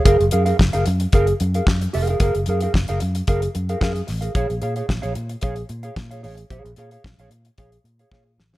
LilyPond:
<<
  \new Staff \with { instrumentName = "Clean electric guitar" } { \time 4/4 \key ges \lydian \tempo 4 = 112 <aes' bes' f''>16 r16 <aes' bes' f''>16 <aes' bes' f''>16 r16 <aes' bes' f''>16 r8 <aes' bes' f''>16 r8 <aes' bes' f''>16 r8 <aes' bes' f''>16 <aes' bes' f''>16 | <aes' bes' f''>16 r16 <aes' bes' f''>16 <aes' bes' f''>16 r16 <aes' bes' f''>16 r8 <aes' bes' f''>16 r8 <aes' bes' f''>16 <aes' bes' f''>16 r8 <aes' bes' f''>16 | <aes' des'' f''>16 r16 <aes' des'' f''>16 <aes' des'' f''>16 r16 <aes' des'' f''>16 r8 <aes' des'' f''>16 r8 <aes' des'' f''>16 r16 <aes' des'' f''>16 <aes' des'' f''>16 r16 | <aes' des'' f''>16 r16 <aes' des'' f''>16 <aes' des'' f''>16 r16 <aes' des'' f''>16 r8 <aes' des'' f''>16 r8 <aes' des'' f''>16 <aes' des'' f''>16 r8 <aes' des'' f''>16 | }
  \new Staff \with { instrumentName = "Fingered electric bass" } { \clef bass \time 4/4 \key ges \lydian ges,,16 ges,,16 ges,8 ges,,16 ges,,16 ges,8 ges,,8 ges,8 ges,8 f,,8 | ges,,16 ges,,16 ges,8 ges,,16 ges,,16 ges,8 ges,,8 ges,8 ges,8 a,,8 | bes,,16 bes,,16 bes,8 bes,,16 bes,,16 bes,8 bes,,8 bes,8 bes,8 a,,8 | bes,,16 bes,,16 bes,8 bes,,16 bes,,16 bes,8 bes,,8 bes,8 bes,8 a,,8 | }
  \new DrumStaff \with { instrumentName = "Drums" } \drummode { \time 4/4 <hh bd>16 hh16 hh16 hh16 <bd sn>16 hh16 hh16 hh16 <hh bd>16 hh16 hh16 hh16 <bd sn>16 hh16 hho16 hh16 | <hh bd>16 hh16 hh16 hh16 <bd sn>16 hh16 hh16 hh16 <hh bd>16 hh16 hh16 hh16 <bd sn>16 hh16 <hho sn>16 hh16 | <hh bd>16 hh16 hh16 hh16 <bd sn>16 hh16 hh16 hh16 <hh bd>16 hh16 hh16 hh16 <bd sn>16 hh16 hho16 hh16 | <hh bd>16 hh16 hh16 hh16 <bd sn>16 hh16 hh16 hh16 <hh bd>16 hh16 hh16 hh16 <bd sn>8 sn16 sn16 | }
>>